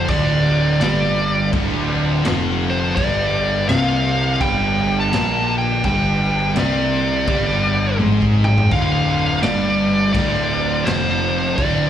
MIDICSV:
0, 0, Header, 1, 6, 480
1, 0, Start_track
1, 0, Key_signature, -1, "minor"
1, 0, Tempo, 718563
1, 63, Time_signature, 4, 2, 24, 8
1, 7947, End_track
2, 0, Start_track
2, 0, Title_t, "Lead electric guitar"
2, 0, Program_c, 0, 29
2, 65, Note_on_c, 0, 74, 86
2, 999, Note_off_c, 0, 74, 0
2, 1804, Note_on_c, 0, 72, 82
2, 1971, Note_off_c, 0, 72, 0
2, 1974, Note_on_c, 0, 74, 104
2, 2461, Note_off_c, 0, 74, 0
2, 2464, Note_on_c, 0, 77, 88
2, 2944, Note_on_c, 0, 79, 106
2, 2959, Note_off_c, 0, 77, 0
2, 3336, Note_off_c, 0, 79, 0
2, 3338, Note_on_c, 0, 81, 100
2, 3699, Note_off_c, 0, 81, 0
2, 3728, Note_on_c, 0, 79, 107
2, 3899, Note_off_c, 0, 79, 0
2, 3907, Note_on_c, 0, 79, 105
2, 4359, Note_off_c, 0, 79, 0
2, 4402, Note_on_c, 0, 74, 77
2, 5326, Note_off_c, 0, 74, 0
2, 5643, Note_on_c, 0, 79, 113
2, 5811, Note_off_c, 0, 79, 0
2, 5823, Note_on_c, 0, 77, 99
2, 6276, Note_off_c, 0, 77, 0
2, 6298, Note_on_c, 0, 74, 94
2, 6758, Note_off_c, 0, 74, 0
2, 6766, Note_on_c, 0, 74, 101
2, 7246, Note_on_c, 0, 72, 85
2, 7268, Note_off_c, 0, 74, 0
2, 7720, Note_on_c, 0, 74, 89
2, 7747, Note_off_c, 0, 72, 0
2, 7947, Note_off_c, 0, 74, 0
2, 7947, End_track
3, 0, Start_track
3, 0, Title_t, "String machine"
3, 0, Program_c, 1, 50
3, 0, Note_on_c, 1, 50, 87
3, 0, Note_on_c, 1, 65, 94
3, 65, Note_on_c, 1, 67, 74
3, 1959, Note_off_c, 1, 50, 0
3, 1959, Note_off_c, 1, 65, 0
3, 1985, Note_on_c, 1, 81, 90
3, 1990, Note_on_c, 1, 62, 74
3, 5796, Note_off_c, 1, 81, 0
3, 5797, Note_off_c, 1, 67, 0
3, 5798, Note_off_c, 1, 62, 0
3, 5828, Note_on_c, 1, 57, 73
3, 5835, Note_on_c, 1, 62, 82
3, 5836, Note_on_c, 1, 65, 97
3, 7947, Note_off_c, 1, 57, 0
3, 7947, Note_off_c, 1, 62, 0
3, 7947, Note_off_c, 1, 65, 0
3, 7947, End_track
4, 0, Start_track
4, 0, Title_t, "Distorted electric guitar"
4, 0, Program_c, 2, 30
4, 61, Note_on_c, 2, 38, 89
4, 65, Note_on_c, 2, 50, 108
4, 538, Note_off_c, 2, 38, 0
4, 540, Note_off_c, 2, 50, 0
4, 545, Note_on_c, 2, 43, 98
4, 547, Note_on_c, 2, 55, 107
4, 1018, Note_off_c, 2, 43, 0
4, 1020, Note_off_c, 2, 55, 0
4, 1021, Note_on_c, 2, 38, 102
4, 1023, Note_on_c, 2, 50, 109
4, 1496, Note_off_c, 2, 38, 0
4, 1498, Note_off_c, 2, 50, 0
4, 1499, Note_on_c, 2, 41, 92
4, 1501, Note_on_c, 2, 53, 114
4, 1977, Note_off_c, 2, 41, 0
4, 1978, Note_off_c, 2, 53, 0
4, 1983, Note_on_c, 2, 43, 91
4, 1989, Note_on_c, 2, 55, 99
4, 2459, Note_off_c, 2, 43, 0
4, 2462, Note_off_c, 2, 55, 0
4, 2465, Note_on_c, 2, 48, 102
4, 2469, Note_on_c, 2, 60, 115
4, 2940, Note_off_c, 2, 48, 0
4, 2942, Note_off_c, 2, 60, 0
4, 2945, Note_on_c, 2, 43, 99
4, 2947, Note_on_c, 2, 55, 117
4, 3415, Note_off_c, 2, 43, 0
4, 3418, Note_on_c, 2, 46, 96
4, 3420, Note_off_c, 2, 55, 0
4, 3423, Note_on_c, 2, 58, 108
4, 3896, Note_off_c, 2, 46, 0
4, 3899, Note_off_c, 2, 58, 0
4, 3902, Note_on_c, 2, 43, 91
4, 3905, Note_on_c, 2, 55, 107
4, 4376, Note_off_c, 2, 43, 0
4, 4376, Note_off_c, 2, 55, 0
4, 4379, Note_on_c, 2, 48, 92
4, 4379, Note_on_c, 2, 60, 114
4, 4856, Note_off_c, 2, 48, 0
4, 4856, Note_off_c, 2, 60, 0
4, 4862, Note_on_c, 2, 43, 107
4, 4870, Note_on_c, 2, 55, 115
4, 5335, Note_off_c, 2, 43, 0
4, 5338, Note_on_c, 2, 44, 102
4, 5341, Note_off_c, 2, 55, 0
4, 5343, Note_on_c, 2, 56, 100
4, 5815, Note_off_c, 2, 44, 0
4, 5817, Note_off_c, 2, 56, 0
4, 5825, Note_on_c, 2, 38, 90
4, 5826, Note_on_c, 2, 50, 112
4, 6305, Note_off_c, 2, 38, 0
4, 6305, Note_on_c, 2, 43, 97
4, 6307, Note_off_c, 2, 50, 0
4, 6307, Note_on_c, 2, 55, 106
4, 6777, Note_off_c, 2, 43, 0
4, 6778, Note_off_c, 2, 55, 0
4, 6787, Note_on_c, 2, 38, 101
4, 6791, Note_on_c, 2, 50, 110
4, 7252, Note_off_c, 2, 38, 0
4, 7255, Note_on_c, 2, 41, 99
4, 7259, Note_off_c, 2, 50, 0
4, 7261, Note_on_c, 2, 53, 109
4, 7727, Note_off_c, 2, 41, 0
4, 7730, Note_on_c, 2, 38, 101
4, 7733, Note_off_c, 2, 53, 0
4, 7736, Note_on_c, 2, 50, 109
4, 7947, Note_off_c, 2, 38, 0
4, 7947, Note_off_c, 2, 50, 0
4, 7947, End_track
5, 0, Start_track
5, 0, Title_t, "Picked electric bass"
5, 0, Program_c, 3, 34
5, 56, Note_on_c, 3, 26, 92
5, 514, Note_off_c, 3, 26, 0
5, 540, Note_on_c, 3, 31, 111
5, 996, Note_off_c, 3, 31, 0
5, 1023, Note_on_c, 3, 26, 106
5, 1478, Note_off_c, 3, 26, 0
5, 1508, Note_on_c, 3, 29, 100
5, 1961, Note_off_c, 3, 29, 0
5, 1985, Note_on_c, 3, 31, 91
5, 2439, Note_off_c, 3, 31, 0
5, 2467, Note_on_c, 3, 36, 105
5, 2920, Note_off_c, 3, 36, 0
5, 2945, Note_on_c, 3, 31, 101
5, 3399, Note_off_c, 3, 31, 0
5, 3430, Note_on_c, 3, 34, 100
5, 3881, Note_off_c, 3, 34, 0
5, 3905, Note_on_c, 3, 31, 92
5, 4358, Note_off_c, 3, 31, 0
5, 4383, Note_on_c, 3, 36, 99
5, 4837, Note_off_c, 3, 36, 0
5, 4860, Note_on_c, 3, 31, 100
5, 5315, Note_off_c, 3, 31, 0
5, 5341, Note_on_c, 3, 32, 97
5, 5795, Note_off_c, 3, 32, 0
5, 5823, Note_on_c, 3, 26, 88
5, 6275, Note_off_c, 3, 26, 0
5, 6300, Note_on_c, 3, 31, 103
5, 6753, Note_off_c, 3, 31, 0
5, 6778, Note_on_c, 3, 26, 97
5, 7232, Note_off_c, 3, 26, 0
5, 7260, Note_on_c, 3, 29, 98
5, 7713, Note_off_c, 3, 29, 0
5, 7735, Note_on_c, 3, 26, 102
5, 7947, Note_off_c, 3, 26, 0
5, 7947, End_track
6, 0, Start_track
6, 0, Title_t, "Drums"
6, 55, Note_on_c, 9, 49, 65
6, 57, Note_on_c, 9, 36, 104
6, 122, Note_off_c, 9, 49, 0
6, 124, Note_off_c, 9, 36, 0
6, 539, Note_on_c, 9, 49, 70
6, 549, Note_on_c, 9, 38, 125
6, 606, Note_off_c, 9, 49, 0
6, 616, Note_off_c, 9, 38, 0
6, 1022, Note_on_c, 9, 36, 107
6, 1023, Note_on_c, 9, 49, 65
6, 1089, Note_off_c, 9, 36, 0
6, 1090, Note_off_c, 9, 49, 0
6, 1502, Note_on_c, 9, 49, 78
6, 1512, Note_on_c, 9, 38, 127
6, 1569, Note_off_c, 9, 49, 0
6, 1579, Note_off_c, 9, 38, 0
6, 1984, Note_on_c, 9, 36, 101
6, 1985, Note_on_c, 9, 49, 69
6, 2051, Note_off_c, 9, 36, 0
6, 2052, Note_off_c, 9, 49, 0
6, 2464, Note_on_c, 9, 49, 73
6, 2474, Note_on_c, 9, 38, 111
6, 2531, Note_off_c, 9, 49, 0
6, 2541, Note_off_c, 9, 38, 0
6, 2944, Note_on_c, 9, 36, 114
6, 2946, Note_on_c, 9, 49, 69
6, 3011, Note_off_c, 9, 36, 0
6, 3013, Note_off_c, 9, 49, 0
6, 3425, Note_on_c, 9, 49, 70
6, 3435, Note_on_c, 9, 38, 123
6, 3492, Note_off_c, 9, 49, 0
6, 3502, Note_off_c, 9, 38, 0
6, 3899, Note_on_c, 9, 49, 59
6, 3902, Note_on_c, 9, 36, 102
6, 3966, Note_off_c, 9, 49, 0
6, 3969, Note_off_c, 9, 36, 0
6, 4379, Note_on_c, 9, 49, 62
6, 4389, Note_on_c, 9, 38, 118
6, 4446, Note_off_c, 9, 49, 0
6, 4456, Note_off_c, 9, 38, 0
6, 4859, Note_on_c, 9, 49, 72
6, 4862, Note_on_c, 9, 36, 110
6, 4926, Note_off_c, 9, 49, 0
6, 4928, Note_off_c, 9, 36, 0
6, 5342, Note_on_c, 9, 48, 75
6, 5409, Note_off_c, 9, 48, 0
6, 5491, Note_on_c, 9, 36, 67
6, 5558, Note_off_c, 9, 36, 0
6, 5641, Note_on_c, 9, 45, 95
6, 5707, Note_off_c, 9, 45, 0
6, 5730, Note_on_c, 9, 43, 101
6, 5797, Note_off_c, 9, 43, 0
6, 5819, Note_on_c, 9, 49, 63
6, 5821, Note_on_c, 9, 36, 106
6, 5886, Note_off_c, 9, 49, 0
6, 5888, Note_off_c, 9, 36, 0
6, 6297, Note_on_c, 9, 49, 68
6, 6307, Note_on_c, 9, 38, 117
6, 6364, Note_off_c, 9, 49, 0
6, 6374, Note_off_c, 9, 38, 0
6, 6777, Note_on_c, 9, 49, 73
6, 6778, Note_on_c, 9, 36, 113
6, 6844, Note_off_c, 9, 36, 0
6, 6844, Note_off_c, 9, 49, 0
6, 7257, Note_on_c, 9, 49, 78
6, 7267, Note_on_c, 9, 38, 127
6, 7324, Note_off_c, 9, 49, 0
6, 7334, Note_off_c, 9, 38, 0
6, 7735, Note_on_c, 9, 36, 103
6, 7735, Note_on_c, 9, 49, 63
6, 7802, Note_off_c, 9, 36, 0
6, 7802, Note_off_c, 9, 49, 0
6, 7947, End_track
0, 0, End_of_file